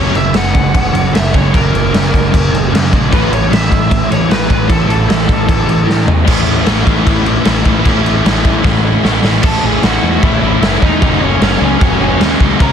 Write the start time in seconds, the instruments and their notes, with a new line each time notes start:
Already playing: picked electric bass F#1, overdriven electric guitar F#2 C#3 F#3 A#3 C#4, lead electric guitar C#5
0.14 picked electric bass F#1, overdriven electric guitar F#2 C#3, lead electric guitar E5, crash
0.33 picked electric bass F#1, overdriven electric guitar F#2 C#3, lead electric guitar F#5, snare, crash
0.54 picked electric bass F#1, overdriven electric guitar F#2 C#3, kick, crash
0.74 picked electric bass F#1, overdriven electric guitar F#2 C#3, kick, crash
0.93 picked electric bass F#1, overdriven electric guitar F#2 C#3, crash
1.13 picked electric bass F#1, overdriven electric guitar F#2 C#3, lead electric guitar E5, snare, crash
1.33 picked electric bass F#1, overdriven electric guitar F#2 C#3 F#3 A#3 C#4, lead electric guitar C#5, kick, crash
1.53 picked electric bass F#1, overdriven electric guitar F#2 C#3 F#3 A#3 C#4, lead electric guitar A#4, kick, crash
1.73 picked electric bass F#1, overdriven electric guitar F#2 C#3, crash
1.93 picked electric bass F#1, overdriven electric guitar F#2 C#3, snare, crash
2.12 picked electric bass F#1, overdriven electric guitar F#2 C#3, kick, crash
2.32 picked electric bass F#1, overdriven electric guitar F#2 C#3, kick, crash
2.51 picked electric bass F#1, overdriven electric guitar F#2 C#3, crash
2.71 overdriven electric guitar F#2 C#3, picked electric bass F#2, crash
2.75 snare
2.91 picked electric bass A#1, overdriven electric guitar F#2 C#3 F#3 A#3 C#4, kick, crash
3.12 picked electric bass A1, overdriven electric guitar A2 E3 A3 C#4 E4, lead electric guitar B4, kick, crash
3.31 picked electric bass A1, overdriven electric guitar A2 E3, lead electric guitar C#5, crash
3.51 picked electric bass A1, overdriven electric guitar A2 E3, lead electric guitar E5, snare, crash
3.72 picked electric bass A1, overdriven electric guitar A2 E3, kick, crash
3.91 picked electric bass A1, overdriven electric guitar A2 E3, kick, crash
4.10 picked electric bass A1, overdriven electric guitar A2 E3, lead electric guitar C#5, crash
4.30 picked electric bass A1, overdriven electric guitar A2 E3, lead electric guitar B4, snare, crash
4.49 picked electric bass A1, overdriven electric guitar A2 E3 A3 C#4 E4, lead electric guitar B4, kick, crash
4.68 picked electric bass A1, overdriven electric guitar A2 E3 A3 C#4 E4, lead electric guitar A4, kick, crash
4.88 picked electric bass A1, overdriven electric guitar A2 E3, lead electric guitar A4, crash
5.09 picked electric bass A1, overdriven electric guitar A2 E3, snare, crash
5.28 picked electric bass A1, overdriven electric guitar A2 E3, kick, crash
5.48 picked electric bass A1, overdriven electric guitar A2 E3, kick, crash
5.68 picked electric bass A1, overdriven electric guitar A2 E3, crash
5.87 overdriven electric guitar A2 E3, picked electric bass A2, snare
6.06 picked electric bass E2, overdriven electric guitar A2 E3 A3 C#4 E4, floor tom
6.27 picked electric bass A1, overdriven electric guitar A2 E3 A3 C#4 E4, kick, crash
6.47 picked electric bass A1, crash
6.66 picked electric bass A1, overdriven electric guitar A2 E3 A3 C#4 E4, snare, crash
6.86 picked electric bass A1, overdriven electric guitar A2 E3 A3 C#4 E4, kick, crash
7.04 picked electric bass A1, overdriven electric guitar A2 E3 A3 C#4 E4, kick, crash
7.26 crash
7.44 picked electric bass A1, overdriven electric guitar A2 E3 A3 C#4 E4, snare, crash
7.64 picked electric bass A1, overdriven electric guitar A2 E3 A3 C#4 E4, kick, crash
7.83 picked electric bass A1, overdriven electric guitar A2 E3 A3 C#4 E4, kick, crash
8.04 picked electric bass A1, crash
8.24 picked electric bass A1, overdriven electric guitar A2 E3 A3 C#4 E4, snare, crash
8.43 picked electric bass A1, overdriven electric guitar A2 E3 A3 C#4 E4, kick, crash
8.63 picked electric bass A1, overdriven electric guitar A2 E3 A3 C#4 E4, kick, snare
9.03 picked electric bass A1, overdriven electric guitar A2 E3 A3 C#4 E4, snare
9.23 picked electric bass A1, overdriven electric guitar A2 E3 A3 C#4 E4, snare
9.42 picked electric bass A1, overdriven electric guitar A2 E3 A3 C#4 E4, lead electric guitar A4 A5, kick, crash
9.63 picked electric bass A1, overdriven electric guitar A2 E3 A3 C#4 E4, lead electric guitar G#4 G#5
9.81 picked electric bass A1, overdriven electric guitar A2 E3 A3 C#4 E4, lead electric guitar F#4 F#5, snare, crash
10.02 picked electric bass E2, overdriven electric guitar A2 E3 A3 C#4 E4
10.21 picked electric bass A1, overdriven electric guitar A2 E3 A3 C#4 E4, lead electric guitar E4 E5, kick, crash
10.41 picked electric bass A1, overdriven electric guitar A2 E3 A3 C#4 E4
10.60 picked electric bass F#1, overdriven electric guitar A2 E3 A3 C#4 E4, snare, crash
10.81 picked electric bass E2, overdriven electric guitar A2 E3 A3 C#4 E4, lead electric guitar D#4 D#5, kick
11.01 picked electric bass F#1, overdriven electric guitar F#2 C#3 F#3 A#3 C#4, kick, crash
11.21 picked electric bass F#1, overdriven electric guitar F#2 C#3 F#3 A#3 C#4, lead electric guitar C#4 C#5
11.41 picked electric bass F#1, overdriven electric guitar F#2 C#3 F#3 A#3 C#4, lead electric guitar C#4 C#5, snare, crash
11.61 picked electric bass C#2, overdriven electric guitar F#2 C#3 F#3 A#3 C#4, lead electric guitar C#4 C#5
11.81 picked electric bass F#1, overdriven electric guitar F#2 C#3 F#3 A#3 C#4, kick, crash
12.00 picked electric bass F#1, overdriven electric guitar F#2 C#3 F#3 A#3 C#4
12.19 picked electric bass D#2, overdriven electric guitar F#2 C#3 F#3 A#3 C#4, snare, crash
12.39 picked electric bass C#2, overdriven electric guitar F#2 C#3 F#3 A#3 C#4, kick
12.60 picked electric bass C#2, overdriven electric guitar C#3 F3 G#3 C#4, lead electric guitar A#4 A#5, kick, crash